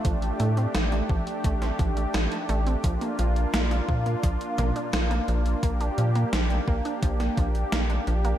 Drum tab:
HH |xxxxxx-xxxxxxxxx|xxxxxx-xxxxxxxxx|xxxxxx-xxxxxxxxx|
SD |----o----o--o---|----o-------o---|----o----o--o---|
T2 |----------------|----------o-----|----------------|
BD |o-----o-o-o-----|o-----o-o-------|o-----o-o-o-----|